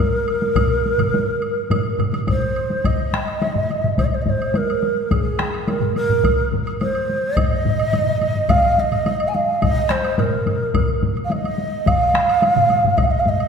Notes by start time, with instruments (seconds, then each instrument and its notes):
Already playing: shakuhachi A#4
0.28 high woodblock
0.42 taiko high
0.56 taiko, taiko low-mid, taiko mid, taiko high, high woodblock
0.86 taiko high
0.98 taiko low-mid, taiko mid, taiko high, high woodblock
1.14 taiko high
1.42 high woodblock
1.70 taiko low-mid, taiko mid, taiko high, high woodblock
1.98 taiko low-mid, taiko mid, high woodblock
2.13 taiko high, high woodblock
2.27 shakuhachi C5, taiko, taiko low-mid, taiko mid, taiko high, high woodblock
2.56 high woodblock
2.70 taiko high
2.84 shakuhachi D#5, taiko, taiko low-mid, taiko mid, taiko high, high woodblock
2.99 taiko high
3.13 taiko rim, taiko high
3.28 taiko high, high woodblock
3.42 taiko high, high woodblock
3.55 taiko low-mid, taiko mid, taiko high
3.70 taiko high, high woodblock
3.84 taiko low-mid, taiko mid, taiko high
3.98 shakuhachi C5, taiko, taiko high, high woodblock
4.05 shakuhachi D#5
4.12 shakuhachi C5, taiko high
4.22 shakuhachi D#5, taiko high
4.27 shakuhachi C5, taiko low-mid, taiko mid
4.40 taiko high, high woodblock
4.54 shakuhachi A#4, taiko high, high woodblock
4.70 high woodblock
4.83 taiko high
4.97 taiko high
5.11 shakuhachi G#4, taiko, taiko low-mid, taiko mid, taiko high, high woodblock
5.25 taiko high
5.39 taiko rim, taiko high
5.54 taiko high, high woodblock
5.68 shakuhachi A#4, taiko high, high woodblock
5.81 taiko low-mid, taiko mid, taiko high
5.96 shakuhachi A#4, taiko high, high woodblock
6.09 taiko low-mid, taiko mid, taiko high
6.24 taiko, taiko high, high woodblock
6.39 taiko high
6.51 taiko low-mid, taiko mid, taiko high
6.67 taiko high, high woodblock
6.81 shakuhachi C5, taiko high, high woodblock
6.95 high woodblock
7.09 taiko high
7.23 taiko high
7.37 shakuhachi D#5, taiko, taiko low-mid, taiko mid, taiko high, high woodblock
7.51 taiko low-mid, taiko mid, taiko high
7.65 taiko low-mid, taiko mid, taiko high
7.79 taiko high, high woodblock
7.92 taiko low-mid, taiko mid, taiko high, high woodblock
8.07 taiko low-mid, taiko mid, taiko high
8.20 taiko low-mid, taiko mid, taiko high, high woodblock
8.35 taiko low-mid, taiko mid, taiko high
8.49 shakuhachi F5, taiko, taiko low-mid, taiko mid, taiko high, high woodblock
8.64 taiko high
8.78 shakuhachi D#5, taiko high
8.92 taiko low-mid, taiko mid, taiko high, high woodblock
9.06 taiko high, high woodblock
9.20 high woodblock
9.28 shakuhachi G#5
9.35 shakuhachi F5, taiko high
9.49 taiko high
9.62 shakuhachi D#5, taiko, taiko low-mid, taiko mid, taiko high, high woodblock
9.77 taiko high
9.89 shakuhachi C5, taiko rim, taiko high
9.91 taiko rim
10.04 taiko high, high woodblock
10.18 shakuhachi A#4, taiko low-mid, taiko mid, taiko high, high woodblock
10.32 taiko high
10.46 taiko low-mid, taiko mid, taiko high, high woodblock
10.61 taiko high
10.74 taiko, taiko low-mid, taiko mid, taiko high, high woodblock
10.89 taiko high
11.02 taiko low-mid, taiko mid, taiko high
11.16 taiko high, high woodblock
11.25 shakuhachi F5
11.30 shakuhachi D#5, taiko high, high woodblock
11.44 taiko high, high woodblock
11.58 taiko high
11.72 taiko high
11.86 shakuhachi F5, taiko, taiko low-mid, taiko mid, taiko high, high woodblock
12.01 taiko high
12.14 taiko rim, taiko high
12.29 taiko high, high woodblock
12.42 taiko high, high woodblock
12.56 taiko low-mid, taiko mid, taiko high
12.70 taiko high, high woodblock
12.84 taiko low-mid, taiko mid, taiko high
12.97 shakuhachi D#5, taiko, taiko high, high woodblock
13.04 shakuhachi F5
13.11 shakuhachi D#5, taiko high
13.20 shakuhachi F5
13.25 shakuhachi D#5, taiko low-mid, taiko mid, taiko high
13.40 taiko high, high woodblock